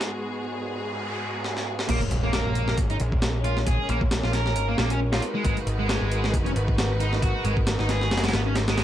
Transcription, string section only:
0.00 1.85 G#2 medium
0.00 1.85 G#3 medium
0.00 1.85 B3 medium
0.00 1.85 F#4 medium
0.00 1.87 G#4 medium
1.89 8.84 G#3 medium
1.89 5.19 A#3 medium
1.89 5.19 C#4 medium
5.22 8.84 D#4 medium
5.22 8.84 F#4 medium
5.22 8.84 A#4 medium
5.22 8.84 B4 medium

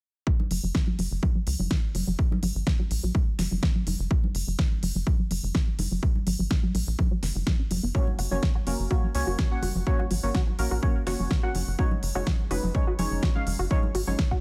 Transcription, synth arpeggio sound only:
0.27 0.31 F#3 medium
0.51 0.60 F#3 medium
0.63 0.67 F#3 medium
0.87 0.96 F#3 medium
0.99 1.03 F#3 medium
1.23 1.32 F#3 medium
1.35 1.39 F#3 medium
1.59 1.68 F#3 medium
1.71 1.75 F#3 medium
1.95 2.04 F#3 medium
2.07 2.11 F#3 medium
2.31 2.40 F#3 medium
2.43 2.47 F#3 medium
2.67 2.76 F#3 medium
2.79 2.83 F#3 medium
3.03 3.12 F#3 medium
3.15 3.19 F#3 medium
3.39 3.48 F#3 medium
3.51 3.55 F#3 medium
3.75 3.84 F#3 medium
3.87 3.91 F#3 medium
4.11 4.20 F#3 medium
4.23 4.27 F#3 medium
4.47 4.56 F#3 medium
4.59 4.63 F#3 medium
4.83 4.92 F#3 medium
4.95 4.99 F#3 medium
5.19 5.28 F#3 medium
5.31 5.35 F#3 medium
5.55 5.64 F#3 medium
5.67 5.71 F#3 medium
5.91 6.00 F#3 medium
6.03 6.07 F#3 medium
6.27 6.36 F#3 medium
6.39 6.43 F#3 medium
6.63 6.72 F#3 medium
6.75 6.79 F#3 medium
6.99 7.08 F#3 medium
7.11 7.15 F#3 medium
7.35 7.39 F#4 medium
7.47 7.53 F#3 medium
7.59 7.63 C#4 medium
7.71 7.80 F#3 medium
7.83 7.92 B3 medium
7.95 7.99 F#3 medium
8.19 8.25 F#4 loud
8.31 8.35 F#3 medium
8.55 8.61 F#4 loud
8.67 8.71 F#3 medium
8.91 8.97 F#4 medium
9.03 9.07 F#3 medium
9.27 9.33 F#4 loud
9.39 9.42 F#3 medium
9.63 9.69 F#4 medium
9.75 9.79 F#3 medium
9.99 10.05 F#4 medium
10.11 10.15 F#3 medium
10.35 10.41 F#4 loud
10.47 10.51 F#3 medium
10.71 10.77 F#4 medium
10.83 10.87 F#3 medium
11.07 11.13 F#4 medium
11.19 11.23 F#3 medium
11.43 11.49 F#4 loud
11.55 11.59 F#3 medium
11.79 11.85 F#4 medium
11.91 11.95 F#3 medium
12.15 12.21 F#4 loud
12.27 12.31 F#3 medium
12.51 12.57 F#4 loud
12.63 12.67 F#3 medium
12.87 12.93 F#4 loud
12.99 13.03 F#3 medium
13.23 13.29 F#4 loud
13.35 13.39 F#3 medium
13.59 13.65 F#4 loud
13.71 13.75 F#3 medium
13.95 14.01 F#4 loud
14.07 14.11 F#3 medium
14.31 14.37 F#4 loud

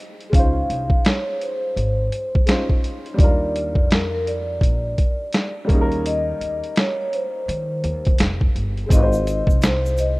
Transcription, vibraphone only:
0.35 1.02 F5 loud
1.06 1.25 C#5 medium
1.28 1.40 C#5 medium
1.43 2.45 C5 medium
3.21 3.87 D5 medium
3.93 4.12 A#4 medium
4.14 4.26 A#4 medium
4.28 5.52 D5 medium
6.06 6.73 D#5 medium
6.78 6.97 C#5 medium
7.01 7.12 C#5 medium
7.14 8.16 C5 medium
8.92 9.59 D#5 medium
9.64 9.83 C5 medium
9.86 9.97 C5 medium
9.99 10.20 D#5 medium

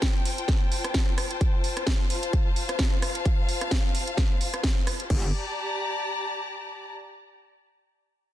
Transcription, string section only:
0.00 5.10 F4 medium
0.00 5.10 C5 medium
0.00 2.11 G5 medium
0.00 5.10 A5 medium
1.98 5.10 F5 medium
5.10 6.91 G4 medium
5.18 6.91 D5 medium
5.25 6.91 A5 medium
5.31 6.91 A#5 medium

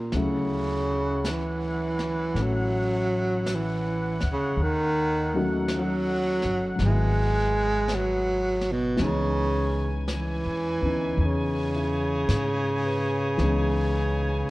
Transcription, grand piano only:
0.00 0.13 G3 soft
0.00 0.13 A#3 soft
0.00 0.14 C4 soft
0.00 0.13 C#4 soft
0.00 0.15 F4 soft
0.14 4.58 F#3 soft
0.14 2.34 A3 soft
0.14 2.37 C#4 soft
0.14 4.59 E4 soft
0.14 4.59 F#4 soft
2.35 4.57 A3 soft
2.35 4.59 C#4 soft
5.34 6.74 F#3 soft
5.34 6.79 A3 soft
5.34 6.80 C#4 soft
5.34 6.80 D#4 soft
5.34 6.80 F#4 medium
6.76 8.97 F#3 soft
6.76 8.96 G#3 soft
6.81 8.97 B3 soft
6.87 9.02 E4 soft
8.97 13.36 E3 soft
8.97 13.37 G#3 soft
8.97 10.80 B3 soft
8.97 10.82 C#4 soft
9.01 10.84 D#4 soft
10.82 13.38 B3 soft
10.82 13.39 C#4 soft
10.82 13.40 D#4 soft
11.74 12.52 E4 soft
12.30 13.17 G#4 soft
12.85 13.63 B4 soft
13.37 14.50 E3 soft
13.37 14.50 G#3 soft
13.37 14.50 B3 soft
13.42 14.50 C#4 soft
13.42 14.50 D#4 soft

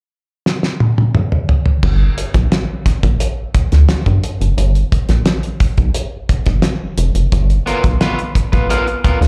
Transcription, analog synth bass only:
1.83 2.09 G1 medium
2.35 2.48 B1 medium
2.86 2.93 A#1 soft
3.04 3.17 A#1 medium
3.55 3.62 D2 soft
3.72 3.85 D2 medium
4.06 4.20 G2 medium
4.41 4.54 F#1 medium
4.58 4.84 G1 medium
5.09 5.22 A#1 medium
5.60 5.67 B1 soft
5.78 5.91 B1 medium
6.29 6.36 G1 soft
6.47 6.60 G1 medium
6.98 7.11 F1 loud
7.15 7.28 F#1 medium
7.32 7.59 G1 medium
7.84 7.97 B1 medium
8.36 8.42 A#1 soft
8.53 8.66 A#1 medium
9.05 9.11 D2 soft
9.21 9.28 D2 medium

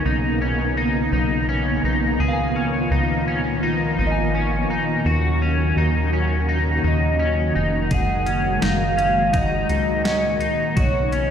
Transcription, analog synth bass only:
0.05 1.09 B1 medium
1.12 1.80 B1 loud
1.84 2.18 B1 medium
2.20 2.88 C#2 medium
2.91 3.94 C#2 medium
3.98 4.66 G#1 medium
5.06 5.73 D#2 loud
5.77 6.80 D#2 loud
6.84 7.52 D#2 loud
7.56 7.90 F1 medium
7.91 8.59 F#1 loud
8.63 9.66 F#1 medium
9.70 10.38 C#2 medium
10.77 11.31 B1 loud

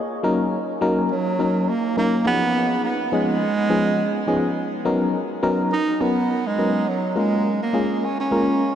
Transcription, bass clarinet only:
1.11 1.70 F#3 loud
1.69 1.97 A#3 loud
1.98 2.24 A#3 loud
2.27 2.80 B3 loud
2.85 3.11 B3 loud
3.14 4.53 G#3 loud
5.73 6.03 D#4 loud
6.02 6.48 B3 loud
6.47 6.90 G#3 loud
6.88 7.17 F#3 medium
7.18 7.59 G#3 loud
7.62 8.06 A#3 loud
8.04 8.20 C#4 medium
8.20 8.75 C#4 medium

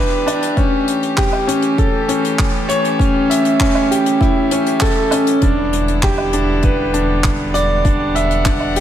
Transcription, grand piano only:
0.00 0.26 D4 medium
0.00 0.60 E4 medium
0.00 0.59 G4 medium
0.00 0.25 B4 medium
0.00 0.59 E5 medium
0.26 0.56 D4 medium
0.57 0.86 C#4 medium
1.17 1.47 G4 loud
1.48 1.77 C#4 medium
1.78 2.07 A4 medium
2.08 2.37 C#4 medium
2.69 2.98 C#5 loud
2.99 3.28 C#4 medium
3.30 3.59 E5 medium
3.60 3.89 C#4 medium
3.91 4.20 G4 medium
4.21 4.50 E4 medium
4.52 4.80 C#4 medium
4.82 5.10 A4 loud
5.12 5.41 C#4 medium
5.42 5.71 D4 medium
6.03 6.32 G4 loud
6.33 6.62 D4 medium
6.63 6.92 B4 medium
6.94 7.23 D4 medium
7.54 7.83 D5 loud
7.85 8.14 D4 medium
8.15 8.44 E5 medium
8.45 8.74 D4 medium
8.76 8.80 G4 medium

